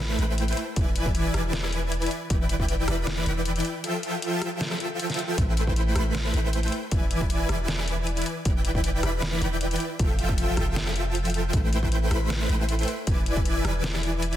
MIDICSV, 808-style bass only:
0, 0, Header, 1, 2, 480
1, 0, Start_track
1, 0, Tempo, 384615
1, 953, Time_signature, 4, 2, 24, 8
1, 17928, End_track
2, 0, Start_track
2, 0, Title_t, "808-style bass"
2, 0, Program_c, 0, 38
2, 0, Note_on_c, 0, 33, 97
2, 211, Note_off_c, 0, 33, 0
2, 232, Note_on_c, 0, 33, 103
2, 676, Note_off_c, 0, 33, 0
2, 955, Note_on_c, 0, 28, 100
2, 1651, Note_off_c, 0, 28, 0
2, 1674, Note_on_c, 0, 28, 95
2, 2597, Note_off_c, 0, 28, 0
2, 2873, Note_on_c, 0, 28, 101
2, 3570, Note_off_c, 0, 28, 0
2, 3592, Note_on_c, 0, 28, 97
2, 4050, Note_off_c, 0, 28, 0
2, 4072, Note_on_c, 0, 28, 98
2, 4517, Note_off_c, 0, 28, 0
2, 6713, Note_on_c, 0, 33, 102
2, 7411, Note_off_c, 0, 33, 0
2, 7431, Note_on_c, 0, 33, 99
2, 7889, Note_off_c, 0, 33, 0
2, 7912, Note_on_c, 0, 33, 99
2, 8357, Note_off_c, 0, 33, 0
2, 8632, Note_on_c, 0, 28, 93
2, 9330, Note_off_c, 0, 28, 0
2, 9352, Note_on_c, 0, 28, 98
2, 10276, Note_off_c, 0, 28, 0
2, 10551, Note_on_c, 0, 28, 99
2, 11249, Note_off_c, 0, 28, 0
2, 11271, Note_on_c, 0, 28, 96
2, 11729, Note_off_c, 0, 28, 0
2, 11752, Note_on_c, 0, 28, 96
2, 12196, Note_off_c, 0, 28, 0
2, 12473, Note_on_c, 0, 29, 97
2, 13171, Note_off_c, 0, 29, 0
2, 13194, Note_on_c, 0, 29, 101
2, 14371, Note_off_c, 0, 29, 0
2, 14393, Note_on_c, 0, 33, 95
2, 15091, Note_off_c, 0, 33, 0
2, 15110, Note_on_c, 0, 33, 100
2, 15569, Note_off_c, 0, 33, 0
2, 15591, Note_on_c, 0, 33, 100
2, 16036, Note_off_c, 0, 33, 0
2, 16313, Note_on_c, 0, 28, 94
2, 17011, Note_off_c, 0, 28, 0
2, 17029, Note_on_c, 0, 28, 97
2, 17928, Note_off_c, 0, 28, 0
2, 17928, End_track
0, 0, End_of_file